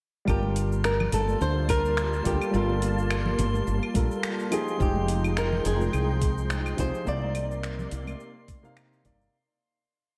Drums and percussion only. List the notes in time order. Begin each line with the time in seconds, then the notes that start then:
0.28 kick, claves, shaker
0.43 high conga
0.56 open hi-hat, shaker
0.72 shaker
0.84 finger snap, shaker
1.00 low conga, claves
1.12 open hi-hat, shaker
1.28 high conga, shaker
1.41 shaker
1.68 kick, open hi-hat, high conga, claves, shaker
1.85 shaker
1.97 finger snap, shaker
2.13 shaker
2.25 kick, open hi-hat, shaker
2.41 claves, shaker
2.54 shaker
2.69 high conga
2.82 open hi-hat, shaker
2.98 shaker
3.10 finger snap, claves, shaker
3.26 low conga
3.39 open hi-hat, shaker
3.54 high conga, shaker
3.67 shaker
3.83 claves
3.94 kick, open hi-hat, high conga, shaker
4.11 shaker
4.23 finger snap, shaker
4.40 shaker
4.52 open hi-hat, claves, shaker
4.68 shaker
4.80 kick, shaker
4.96 high conga
5.08 open hi-hat, shaker
5.24 claves, shaker
5.37 finger snap, shaker
5.53 low conga
5.65 open hi-hat, shaker
5.81 high conga, shaker
5.93 claves, shaker
6.21 kick, open hi-hat, high conga, shaker
6.38 shaker
6.50 finger snap, shaker
6.66 claves, shaker
6.78 kick, open hi-hat, shaker
6.94 shaker
7.07 shaker
7.22 high conga
7.35 open hi-hat, claves, shaker
7.51 shaker
7.63 finger snap, shaker
7.79 low conga, shaker
7.91 open hi-hat, shaker
8.07 high conga, claves, shaker
8.20 shaker
8.48 kick, open hi-hat, high conga, shaker
8.64 shaker
8.77 finger snap, claves, shaker
8.93 shaker
9.05 kick, open hi-hat, shaker
9.21 shaker